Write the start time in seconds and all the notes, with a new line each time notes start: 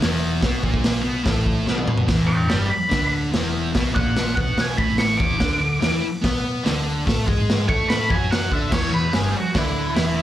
0.00 E1 E2 E3, snare, open hi-hat
0.41 B1 B2 B3, kick, snare, open hi-hat
0.63 A#1 A#2 A#3, kick
0.74 kick
0.84 snare, open hi-hat
1.02 B2 B3
1.07 B1
1.24 A1 A2 A3, kick, snare, open hi-hat
1.46 kick
1.67 B1 B2 B3, snare
1.78 high tom
1.87 mid tom
1.98 floor tom
2.07 E1 E2 E3, kick, snare, open hi-hat
2.27 E1 E2 B4 G5
2.48 G1 G2 G3 D5 B5, snare, open hi-hat
2.69 B5, muted distorted electric guitar stroke
2.89 D3 D4, kick, snare, open hi-hat
2.93 D2
3.31 E1 E2 E3, snare, open hi-hat
3.73 B1 B2 B3, kick, snare, open hi-hat
3.92 A#1 A#2 A#3 F#5, kick
4.16 snare, open hi-hat
4.35 B1 B2 B3 F#5, kick
4.58 G#5, snare, open hi-hat
4.77 A1 A2 A3 B5, kick
4.98 C#6, snare, open hi-hat
5.17 E1 E2 E3 D6, kick
5.38 D2 D3 D4, kick, snare, open hi-hat
5.60 D2 D3
5.81 E2 E3 E4, snare, open hi-hat
6.02 muted distorted electric guitar stroke, muted picked electric bass stroke
6.22 B2 B3 B4, kick, snare, open hi-hat
6.64 D2 D3 D4, snare, open hi-hat
7.05 A2 A3 A4, kick, snare, open hi-hat
7.26 G#2 G#3 G#4, kick
7.50 snare, open hi-hat
7.68 A2 A3 A4 C#6, kick
7.89 B5, snare, open hi-hat
8.09 F#2 F#3 F#4 G#5, kick
8.31 F#5, snare, open hi-hat
8.50 D2 D3 D4 E5, kick
8.70 E1 E2 E3 C#5, kick, snare, crash
8.91 E1 E2 B4
9.13 G1 G2 G3 G#4, snare, open hi-hat
9.33 muted distorted electric guitar stroke, muted picked electric bass stroke
9.38 F#4
9.54 D2 D3 D4, kick, snare, open hi-hat
9.58 E4
9.95 E1 E2 E3, snare, open hi-hat